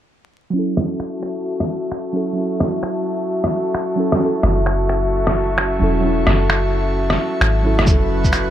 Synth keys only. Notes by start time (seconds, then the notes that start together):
0.50 F#3 C#4
0.56 E4 A4
2.13 F#3 C#4 E4 A4
2.33 F#3 C#4
2.39 E4 A4
3.96 F#3 C#4 E4
4.00 A4
4.17 F#3 C#4
4.22 E4 A4
5.79 F#3 C#4 E4
5.83 A4
6.00 F#3 C#4
6.06 E4 A4
7.63 F#3 C#4 E4 A4
7.83 F#3 C#4
7.89 E4 A4